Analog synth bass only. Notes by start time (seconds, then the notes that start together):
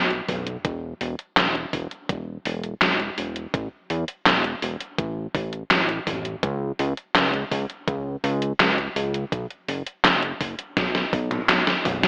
Already playing: B1
0.29 B1
0.65 E1
1.01 E1
1.37 E1
1.73 E1
2.09 E1
2.46 E1
2.82 E1
3.18 E1
3.54 A1
3.90 E2
4.26 E1
4.62 E1
4.98 A1
5.35 A1
5.71 A1
6.07 A1
6.43 C#2
6.79 C#2
7.15 C#2
7.51 C#2
7.88 C#2
8.24 C#2
8.60 C#2
8.96 C#2
9.32 B1
9.68 F#1
10.04 F#1
10.41 F#1
10.77 B1
11.13 B1
11.49 B1
11.85 B1